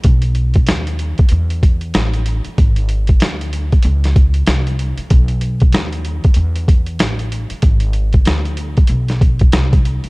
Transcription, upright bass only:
0.04 0.65 B1 loud
0.68 1.16 D#2 medium
1.32 1.92 E2 loud
1.95 2.43 A1 medium
2.46 muted upright bass stroke soft
2.58 3.18 G#1 loud
3.22 3.70 D2 medium
3.72 muted upright bass stroke soft
3.85 4.44 C#2 loud
4.48 4.96 C2 medium
4.98 muted upright bass stroke soft
5.11 5.71 B1 loud
5.74 6.22 D#2 medium
6.25 muted upright bass stroke soft
6.36 6.97 E2 loud
7.00 7.48 A1 medium
7.51 muted upright bass stroke soft
7.63 8.23 G#1 loud
8.26 8.74 D2 medium
8.78 muted upright bass stroke soft
8.89 9.49 B1 medium
9.53 10.01 C2 medium
10.04 muted upright bass stroke soft

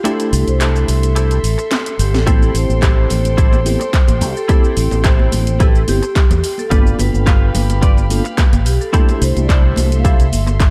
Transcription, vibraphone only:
0.06 0.49 A4 loud
0.48 0.60 C5 medium
0.62 1.13 A4 loud
1.17 2.02 A4 medium
2.00 2.15 G4 loud
2.15 2.57 A4 loud
2.56 3.10 C5 loud
3.11 4.25 C5 loud
4.23 4.37 G4 medium
4.37 4.50 A4 loud
4.51 5.07 A4 loud
5.06 5.63 C5 medium
5.61 5.87 A4 medium
5.89 6.43 G4 loud
6.44 6.58 G4 medium
6.59 7.01 A4 loud
7.00 7.54 B4 loud
7.55 8.70 B4 loud
8.66 8.73 G4 medium
8.81 9.19 A4 loud
9.22 9.43 C5 medium
9.43 9.49 D5 medium
9.50 9.95 C5 medium
9.98 10.05 F5 medium
10.06 10.70 E5 loud

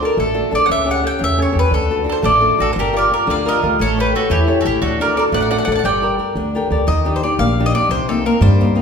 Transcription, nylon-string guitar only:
0.02 0.30 D4 soft
0.02 0.30 F#4 soft
0.02 0.30 A4 soft
0.18 0.52 A3 medium
0.34 0.50 D4 medium
0.34 0.51 F#4 soft
0.34 0.51 A4 soft
0.51 0.65 D4 soft
0.51 0.65 F#4 soft
0.51 0.66 A4 medium
0.67 1.02 C#3 medium
0.85 1.01 C#4 soft
0.85 1.02 G4 soft
0.85 1.02 A4 soft
1.03 1.31 C#4 soft
1.03 1.32 G4 soft
1.03 1.31 A4 soft
1.19 1.53 C#3 medium
1.38 1.51 C#4 soft
1.38 1.51 G4 soft
1.38 1.52 A4 soft
1.52 1.66 C#4 soft
1.52 1.67 G4 soft
1.52 1.67 A4 soft
1.70 2.05 D3 soft
1.90 2.03 D4 soft
1.90 2.05 F#4 soft
1.90 2.05 A4 soft
2.04 2.33 D4 soft
2.04 2.34 F#4 soft
2.04 2.34 A4 soft
2.22 2.57 A3 medium
2.40 2.56 D4 soft
2.40 2.57 F#4 soft
2.40 2.57 A4 medium
2.57 2.71 D4 soft
2.57 2.71 F#4 soft
2.57 2.72 A4 soft
2.76 3.10 G3 medium
2.93 3.08 F4 soft
2.93 3.09 G4 soft
2.93 3.10 A#4 soft
3.10 3.38 F4 soft
3.10 3.39 G4 soft
3.10 3.39 A#4 soft
3.27 3.61 D3 medium
3.45 3.61 F4 soft
3.45 3.62 G4 soft
3.45 3.62 A#4 medium
3.62 3.75 F4 soft
3.62 3.76 G4 soft
3.62 3.76 A#4 soft
3.79 4.13 A3 medium
3.97 4.14 G4 soft
3.97 4.14 A4 soft
3.97 4.15 C#5 soft
4.15 4.42 G4 soft
4.15 4.42 A4 soft
4.15 4.43 C#5 soft
4.30 4.63 E3 medium
4.47 4.64 G4 soft
4.47 4.63 A4 soft
4.47 4.64 C#5 medium
4.65 4.78 G4 soft
4.65 4.77 A4 soft
4.65 4.78 C#5 medium
4.82 5.15 D3 medium
5.00 5.16 D4 soft
5.00 5.16 F#4 soft
5.00 5.16 A4 soft
5.17 5.44 D4 soft
5.17 5.45 F#4 soft
5.17 5.45 A4 soft
5.32 5.66 A3 medium
5.51 5.66 D4 soft
5.51 5.66 F#4 soft
5.51 5.67 A4 medium
5.67 5.80 D4 soft
5.67 5.80 F#4 soft
5.67 5.81 A4 soft
5.84 6.18 G3 medium
6.02 6.17 G4 soft
6.02 6.18 A4 soft
6.02 6.18 A#4 soft
6.19 6.47 G4 soft
6.19 6.47 A4 soft
6.19 6.47 A#4 soft
6.37 6.70 D3 medium
6.55 6.69 G4 soft
6.55 6.70 A4 soft
6.55 6.70 A#4 soft
6.55 6.71 G5 medium
6.70 6.84 G4 soft
6.70 6.84 A4 soft
6.70 6.84 A#4 soft
6.70 6.87 D5 soft
6.87 7.22 D#3 medium
7.05 7.23 D4 soft
7.05 7.23 D#4 soft
7.05 7.24 G4 soft
7.24 7.52 D4 soft
7.24 7.52 D#4 soft
7.24 7.52 G4 soft
7.40 7.74 A#3 medium
7.60 7.75 D4 soft
7.60 7.75 D#4 soft
7.60 7.74 G4 medium
7.76 7.88 D4 soft
7.76 7.88 D#4 soft
7.76 7.88 G4 soft
7.90 8.24 C3 medium
8.09 8.24 A#3 soft
8.09 8.25 C4 soft
8.09 8.25 D#4 medium
8.25 8.53 A#3 soft
8.25 8.53 C4 soft
8.25 8.53 D#4 soft
8.42 8.75 G3 medium
8.61 8.74 A#3 medium
8.61 8.75 C4 medium
8.61 8.75 D#4 medium
8.75 8.82 A#3 soft
8.75 8.82 C4 soft
8.75 8.82 D#4 medium

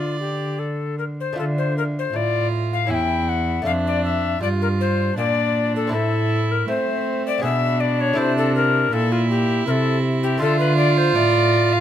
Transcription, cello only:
0.00 1.14 D3 medium
1.39 2.10 D3 medium
2.14 2.90 A2 medium
2.89 3.65 E2 medium
3.66 4.40 F2 medium
4.41 5.15 G2 medium
5.18 5.95 A#2 medium
5.93 6.68 A2 medium
6.68 7.45 A3 medium
7.43 8.17 B2 medium
8.18 8.91 C3 medium
8.92 9.66 A#2 medium
9.68 10.43 C3 medium
10.41 11.16 D3 medium
11.16 11.80 A2 medium

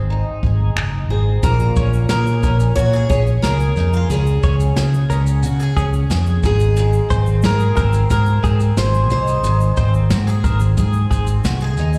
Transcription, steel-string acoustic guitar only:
1.10 1.44 G#4 medium
1.43 2.06 A#4 medium
2.09 2.75 A#4 medium
2.75 3.07 C#5 loud
3.09 3.19 C#5 loud
3.42 4.10 A#4 medium
4.10 4.73 G#4 medium
6.45 7.45 G#4 medium
7.45 8.10 A#4 loud
8.11 8.78 A#4 medium
8.78 9.10 C5 medium
9.11 11.74 C5 medium

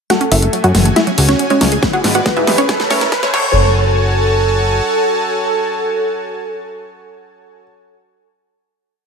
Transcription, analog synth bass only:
0.32 0.49 F#1 loud
0.64 0.72 F#2 medium
0.75 0.92 F#1 loud
1.18 1.35 C#2 medium
1.61 1.78 C#2 medium
2.04 2.21 G#1 loud
2.37 2.45 G#2 loud
2.47 2.64 G#1 loud
2.91 3.08 A2 medium
3.34 4.81 F#1 loud

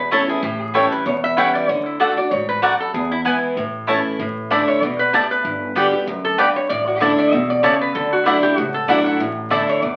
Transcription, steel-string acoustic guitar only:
0.00 0.40 E2 medium
0.11 0.28 E3 medium
0.11 0.29 A3 medium
0.11 0.29 C#4 medium
0.11 0.27 E4 medium
0.28 0.43 C#4 soft
0.28 0.42 E4 medium
0.43 1.03 A2 medium
0.74 1.04 E3 medium
0.74 1.05 G3 medium
0.74 1.05 C#4 medium
0.74 1.05 E4 medium
1.06 1.66 E2 medium
1.37 1.67 E3 medium
1.37 1.68 G3 medium
1.37 1.68 C#4 medium
1.37 1.68 E4 medium
1.69 1.98 D3 medium
2.00 2.17 D3 medium
2.00 2.17 A3 medium
2.00 2.17 D4 medium
2.00 2.16 F#4 medium
2.17 2.32 D4 soft
2.17 2.31 F#4 medium
2.32 2.62 G#2 medium
2.63 2.93 F#2 medium
2.94 3.54 E2 loud
3.25 3.55 E3 medium
3.25 3.56 G#3 medium
3.25 3.56 B3 medium
3.25 3.56 E4 medium
3.57 4.17 A2 medium
3.88 4.18 E3 medium
3.88 4.18 A3 medium
3.88 4.19 C#4 medium
3.88 4.19 E4 medium
4.20 4.79 A2 medium
4.50 4.81 D3 medium
4.50 4.81 A3 medium
4.50 4.81 D4 medium
4.50 4.82 E4 medium
4.83 5.12 B2 medium
5.14 5.44 A2 medium
5.45 6.05 G2 medium
5.76 5.93 D3 medium
5.76 5.93 G3 medium
5.76 5.93 B3 medium
5.76 5.92 G4 loud
5.93 6.08 B3 soft
5.93 6.07 G4 medium
6.07 6.37 F#2 medium
6.39 6.69 G2 medium
6.70 7.30 A2 loud
7.01 7.31 D3 medium
7.01 7.31 A3 medium
7.01 7.32 D4 medium
7.01 7.32 E4 medium
7.33 7.62 B2 medium
7.64 7.94 C#3 medium
7.95 8.55 D3 loud
8.26 8.43 F#3 medium
8.26 8.43 A3 medium
8.26 8.43 D4 medium
8.26 8.42 E4 medium
8.43 8.58 D4 medium
8.43 8.57 E4 medium
8.58 9.18 A2 medium
8.88 9.18 F#3 medium
8.88 9.19 A3 loud
8.88 9.19 D4 loud
8.88 9.19 E4 loud
9.20 9.80 A2 medium
9.50 9.81 D3 medium
9.50 9.81 A3 medium
9.50 9.82 D4 medium
9.50 9.82 E4 medium
9.82 9.96 E2 medium

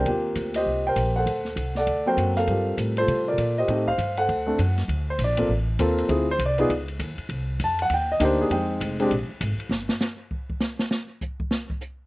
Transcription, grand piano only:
0.00 0.52 A#4 medium
0.00 0.52 C5 medium
0.00 0.57 G5 medium
0.06 0.90 A#3 soft
0.06 0.90 C4 soft
0.06 0.91 F4 soft
0.06 0.56 G4 medium
0.56 1.12 G4 medium
0.56 0.87 C5 medium
0.56 0.83 D#5 medium
0.87 1.26 A#4 medium
0.87 1.17 C5 medium
0.87 1.14 G5 medium
1.16 1.73 A4 medium
1.16 1.73 C5 medium
1.16 1.72 F#5 medium
1.77 2.33 A4 medium
1.77 2.04 D5 medium
1.77 2.33 F#5 medium
2.06 2.46 F#3 medium
2.06 2.45 A#3 medium
2.06 2.45 C4 medium
2.06 2.38 A#4 medium
2.06 2.46 C5 medium
2.06 2.38 G5 medium
2.37 2.93 A4 medium
2.37 2.94 A#4 medium
2.37 2.75 F5 medium
2.49 3.31 G3 soft
2.49 3.32 C4 soft
2.49 2.98 F4 soft
2.49 3.32 G4 soft
2.98 3.27 F4 medium
2.98 3.54 A4 medium
2.98 3.25 C5 medium
3.28 3.66 F4 medium
3.28 3.66 A#4 medium
3.28 3.55 D5 medium
3.58 3.69 G4 medium
3.58 3.87 C5 medium
3.58 3.88 D#5 medium
3.68 3.85 A3 medium
3.68 3.85 C4 medium
3.68 3.85 D#4 soft
3.68 3.86 G4 medium
3.88 4.17 C5 medium
3.88 4.18 F5 medium
4.18 4.46 A4 medium
4.18 4.74 C5 medium
4.18 4.74 F#5 medium
4.46 4.57 A3 medium
4.46 4.57 C4 soft
4.46 4.57 D4 soft
4.46 4.58 A4 medium
5.10 5.20 C5 medium
5.24 5.50 D5 medium
5.37 5.48 A#3 soft
5.37 5.48 C4 medium
5.37 5.48 F4 medium
5.37 5.48 A4 medium
5.79 6.09 A#3 medium
5.79 6.07 C4 medium
5.79 6.09 F4 medium
5.79 6.10 A4 medium
6.08 6.26 C4 medium
6.08 6.26 E4 medium
6.08 6.26 F4 soft
6.08 6.26 G#4 medium
6.31 6.41 C5 medium
6.46 6.71 D5 medium
6.58 6.69 B3 medium
6.58 6.69 D#4 medium
6.58 6.69 F4 medium
6.58 6.70 G#4 medium
7.64 7.80 A5 medium
7.82 7.92 F#5 medium
7.94 8.10 G5 medium
8.12 8.21 D#5 medium
8.20 8.50 A#3 medium
8.20 8.50 D4 medium
8.20 8.50 D#4 medium
8.20 8.51 G4 medium
8.25 8.41 C5 medium
8.41 8.79 G#4 medium
8.51 8.96 G#3 medium
8.51 8.96 C4 medium
8.51 8.96 D#4 soft
8.51 8.96 G5 medium
9.00 9.10 G#3 medium
9.00 9.10 C4 medium
9.00 9.11 D4 medium
9.00 9.11 G4 medium

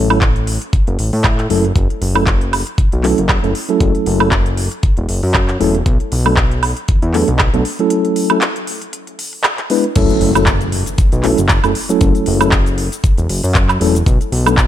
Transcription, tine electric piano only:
0.10 0.17 F#3 medium
0.10 0.17 A3 medium
0.10 0.17 C#4 medium
0.10 0.17 E4 medium
0.10 0.17 A4 medium
1.50 1.63 F#3 medium
1.50 1.64 A3 medium
1.50 1.64 C#4 medium
1.50 1.64 E4 medium
1.50 1.64 A4 loud
2.15 2.22 F#3 medium
2.15 2.22 A3 medium
2.15 2.22 C#4 medium
2.15 2.22 E4 medium
2.15 2.23 A4 medium
3.03 3.17 F#3 medium
3.03 3.17 A3 medium
3.03 3.17 C#4 medium
3.03 3.17 E4 medium
3.03 3.18 A4 loud
3.43 3.50 F#3 medium
3.43 3.50 A3 medium
3.43 3.50 C#4 medium
3.43 3.51 E4 medium
3.43 3.51 A4 loud
3.69 4.17 F#3 medium
3.69 4.17 A3 medium
3.69 4.17 C#4 medium
3.69 4.17 E4 medium
3.69 4.17 A4 medium
4.20 4.27 F#3 medium
4.20 4.27 A3 medium
4.20 4.27 C#4 medium
4.20 4.28 E4 medium
4.20 4.28 A4 medium
5.60 5.74 F#3 medium
5.60 5.74 A3 medium
5.60 5.74 C#4 medium
5.60 5.74 E4 medium
5.60 5.74 A4 loud
6.25 6.32 F#3 medium
6.25 6.33 A3 medium
6.25 6.33 B3 medium
6.25 6.33 D4 medium
6.25 6.33 A4 medium
7.14 7.27 F#3 medium
7.14 7.28 A3 medium
7.14 7.28 B3 medium
7.14 7.28 D4 medium
7.14 7.28 A4 loud
7.54 7.61 F#3 medium
7.54 7.61 A3 medium
7.54 7.61 B3 medium
7.54 7.61 D4 medium
7.54 7.61 A4 loud
7.79 8.27 F#3 medium
7.79 8.28 A3 medium
7.79 8.28 C#4 medium
7.79 8.28 E4 medium
7.79 8.28 A4 loud
8.31 8.38 F#3 medium
8.31 8.38 A3 medium
8.31 8.38 C#4 medium
8.31 8.38 E4 medium
8.31 8.38 A4 medium
9.70 9.84 G#3 medium
9.70 9.84 B3 medium
9.70 9.84 D4 medium
9.70 9.84 E4 medium
9.70 9.84 B4 loud
9.96 10.30 F#3 loud
9.96 10.30 A3 medium
9.96 10.30 C#4 medium
9.96 10.30 E4 medium
9.96 10.31 A4 loud
10.35 10.43 F#3 medium
10.35 10.43 A3 medium
10.35 10.43 C#4 medium
10.35 10.43 E4 medium
10.35 10.43 A4 medium
11.24 11.37 F#3 medium
11.24 11.38 A3 medium
11.24 11.38 C#4 medium
11.24 11.38 E4 medium
11.24 11.38 A4 loud
11.63 11.71 F#3 medium
11.63 11.71 A3 medium
11.63 11.71 C#4 medium
11.63 11.71 E4 medium
11.63 11.71 A4 loud
11.89 12.37 F#3 medium
11.89 12.38 A3 medium
11.89 12.38 C#4 medium
11.89 12.38 E4 medium
11.89 12.38 A4 loud
12.41 12.48 F#3 medium
12.41 12.48 A3 medium
12.41 12.48 C#4 medium
12.41 12.48 E4 medium
12.41 12.48 A4 medium
13.80 13.94 F#3 medium
13.80 13.94 A3 medium
13.80 13.94 C#4 medium
13.80 13.94 E4 medium
13.80 13.95 A4 loud
14.46 14.53 F#3 medium
14.46 14.53 A3 medium
14.46 14.53 B3 medium
14.46 14.53 D4 medium
14.46 14.53 A4 medium

